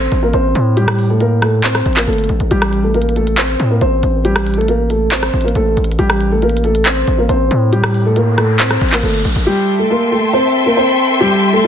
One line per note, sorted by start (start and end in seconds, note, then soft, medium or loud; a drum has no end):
0.00 0.21 C4 medium
0.00 0.21 C5 medium
0.12 0.33 A1 loud
0.12 closed hi-hat medium
0.23 0.33 A#3 medium
0.23 0.32 A#4 medium
0.34 0.54 A1 loud
0.34 0.75 C4 medium
0.34 0.74 C5 medium
0.34 closed hi-hat medium
0.55 1.82 A2 loud
0.55 closed hi-hat medium
0.77 1.08 G3 medium
0.77 1.08 G4 loud
0.77 closed hi-hat medium
0.88 cross-stick medium
0.99 open hi-hat medium
1.10 1.20 A3 medium
1.10 1.20 A4 medium
1.20 1.41 A#3 medium
1.20 1.40 A#4 medium
1.20 closed hi-hat medium
1.42 1.62 A3 medium
1.42 1.62 A4 medium
1.42 cross-stick medium
1.42 closed hi-hat medium
1.64 1.95 C4 medium
1.64 1.95 C5 medium
1.64 clap loud
1.64 closed hi-hat medium
1.75 cross-stick medium
1.86 2.07 A1 loud
1.86 closed hi-hat medium
1.93 2.06 A#4 medium
1.93 clap medium
1.93 closed hi-hat medium
1.98 2.07 A#3 medium
1.98 closed hi-hat soft
2.07 2.28 G1 loud
2.07 2.28 A3 medium
2.07 2.27 A4 medium
2.07 closed hi-hat medium
2.13 closed hi-hat medium
2.18 closed hi-hat medium
2.24 closed hi-hat medium
2.29 2.40 A1 loud
2.29 closed hi-hat medium
2.40 2.51 A1 loud
2.40 closed hi-hat medium
2.51 3.56 A1 loud
2.51 2.82 G3 loud
2.51 2.82 G4 loud
2.51 closed hi-hat medium
2.62 cross-stick loud
2.73 closed hi-hat medium
2.83 2.94 A3 medium
2.83 2.93 A4 medium
2.94 3.15 A#3 medium
2.94 3.14 A#4 medium
2.94 closed hi-hat soft
3.02 closed hi-hat medium
3.09 closed hi-hat medium
3.16 3.36 A3 medium
3.16 3.36 A4 medium
3.16 closed hi-hat soft
3.27 closed hi-hat medium
3.38 3.69 C4 medium
3.38 3.68 C5 medium
3.38 clap loud
3.38 closed hi-hat medium
3.60 3.81 A2 loud
3.60 closed hi-hat medium
3.70 3.81 A#3 medium
3.70 3.80 A#4 medium
3.81 4.02 A1 loud
3.81 4.23 C4 medium
3.81 4.22 C5 medium
3.81 closed hi-hat medium
4.03 5.30 A1 loud
4.03 closed hi-hat medium
4.25 4.56 G3 medium
4.25 4.55 G4 loud
4.25 closed hi-hat medium
4.36 cross-stick loud
4.47 closed hi-hat medium
4.47 open hi-hat medium
4.54 4.67 A4 medium
4.54 closed hi-hat medium
4.58 4.68 A3 medium
4.58 closed hi-hat medium
4.68 4.89 A#3 medium
4.68 4.88 A#4 medium
4.68 closed hi-hat medium
4.90 5.10 A3 medium
4.90 5.10 A4 medium
4.90 closed hi-hat medium
5.12 5.43 C4 medium
5.12 5.43 C5 medium
5.12 clap loud
5.12 closed hi-hat soft
5.23 cross-stick medium
5.23 closed hi-hat medium
5.34 5.54 A1 loud
5.34 closed hi-hat soft
5.41 5.54 A#4 medium
5.41 closed hi-hat medium
5.45 5.55 A#3 medium
5.45 closed hi-hat medium
5.55 5.76 A1 loud
5.55 5.75 A3 medium
5.55 5.75 A4 medium
5.55 closed hi-hat medium
5.77 5.98 A1 loud
5.77 closed hi-hat soft
5.84 closed hi-hat medium
5.92 closed hi-hat medium
5.99 7.03 A1 loud
5.99 6.30 G3 medium
5.99 6.29 G4 loud
5.99 closed hi-hat medium
6.10 cross-stick loud
6.21 closed hi-hat medium
6.31 6.42 A3 medium
6.31 6.41 A4 medium
6.42 6.62 A#3 medium
6.42 6.62 A#4 medium
6.42 closed hi-hat soft
6.49 closed hi-hat medium
6.57 closed hi-hat medium
6.64 6.84 A3 medium
6.64 6.84 A4 medium
6.64 closed hi-hat soft
6.75 closed hi-hat medium
6.86 7.17 C4 medium
6.86 7.16 C5 medium
6.86 clap loud
6.86 closed hi-hat medium
7.07 7.28 A1 loud
7.07 closed hi-hat medium
7.18 7.29 A#3 medium
7.18 7.28 A#4 medium
7.29 7.50 A1 loud
7.29 7.70 C4 medium
7.29 7.70 C5 medium
7.29 closed hi-hat medium
7.51 8.77 A2 loud
7.51 closed hi-hat medium
7.72 8.04 G3 medium
7.72 8.03 G4 loud
7.72 closed hi-hat medium
7.72 riser medium
7.84 cross-stick loud
7.94 open hi-hat medium
8.05 8.16 A3 medium
8.05 8.15 A4 medium
8.16 8.36 A#3 medium
8.16 8.36 A#4 medium
8.16 closed hi-hat medium
8.38 8.58 A3 medium
8.38 8.58 A4 medium
8.38 cross-stick medium
8.38 closed hi-hat medium
8.60 8.91 C4 medium
8.60 8.90 C5 medium
8.60 clap loud
8.60 closed hi-hat medium
8.71 cross-stick medium
8.81 9.02 A1 loud
8.81 closed hi-hat medium
8.89 9.02 A#4 medium
8.89 clap medium
8.89 closed hi-hat medium
8.93 9.03 A#3 medium
8.93 closed hi-hat soft
9.03 9.24 G1 loud
9.03 9.23 A3 medium
9.03 9.23 A4 medium
9.03 closed hi-hat medium
9.09 closed hi-hat medium
9.14 closed hi-hat medium
9.19 closed hi-hat medium
9.25 9.35 A1 loud
9.25 closed hi-hat medium
9.36 9.46 A1 loud
9.36 closed hi-hat medium
9.46 9.78 G3 loud
9.46 9.77 G4 loud
9.46 11.67 A4 medium
9.46 11.67 E5 medium
9.46 11.67 G5 medium
9.46 11.67 C6 medium
9.79 9.89 A3 medium
9.79 9.89 A4 medium
9.90 10.10 A#3 medium
9.90 10.10 A#4 medium
10.12 10.32 A3 medium
10.12 10.31 A4 medium
10.33 10.65 C4 medium
10.33 10.64 C5 medium
10.66 10.76 A#3 medium
10.66 10.76 A#4 medium
10.77 11.18 C4 medium
10.77 11.18 C5 medium
11.20 11.52 G3 medium
11.20 11.51 G4 loud
11.53 11.63 A3 medium
11.53 11.63 A4 medium